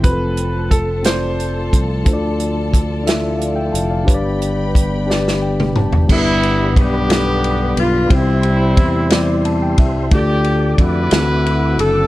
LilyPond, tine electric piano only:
<<
  \new Staff \with { instrumentName = "Tine electric piano" } { \time 6/8 \key g \mixolydian \tempo 4. = 60 << { r2. | r2 <d'' f''>16 <e'' g''>16 <f'' a''>16 <d'' f''>16~ | <d'' f''>16 r4. r16 g''8 a''8 | r2. |
r2 a''16 g''16 e''8 | r2. | } \\ { <c' f' g' a'>4 r8 <c' f' a' d''>4 r8 | <d' f' a' c'' d''>4 r8 <d' e' f' a' e''>4 r8 | <d' g' b' des'' d''>4 r8 <d' g' b' d''>4 r8 | <g b d' g' a' b'>4 r8 <g b d' g' a' b'>4 r8 |
<g c' e' g' c''>4 r8 <g c' e' g' d''>4 r8 | <a d' f' a' d''>4 r8 <c' d' e' fis' aes' a'>4 r8 | } >> }
  \new Staff \with { instrumentName = "Tine electric piano" } { \clef bass \time 6/8 \key g \mixolydian r2. | d4. r4. | g,4. r4. | g,4. r4. |
c4. r4. | d4. d4. | }
>>